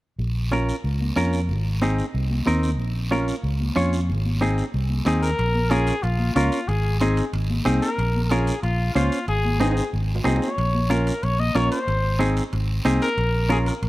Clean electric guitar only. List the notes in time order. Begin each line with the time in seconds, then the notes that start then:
0.52 C#4 F4 A#4
1.16 C#4 F4 A#4
1.82 C4 D#4 G#4
2.47 C4 D#4 A#4
3.11 C#4 F4 A#4
3.76 C#4 F4 C#5
4.41 C4 D#4 G#4
5.06 C4 D#4 G#4
5.71 C#4 F4 A#4
6.36 C#4 F4 A#4
7.01 C4 D#4 G#4
7.65 C4 D#4 G#4
8.31 C#4 F4 A#4
8.95 C#4 F4 C5
9.60 C4 D#4 G#4
10.24 C4 D#4 G#4
10.90 C#4 F4 A#4
11.55 C#4 F4 A#4
12.19 C4 D#4 G#4
12.85 C4 D#4 G#4
13.49 C#4 F4 A#4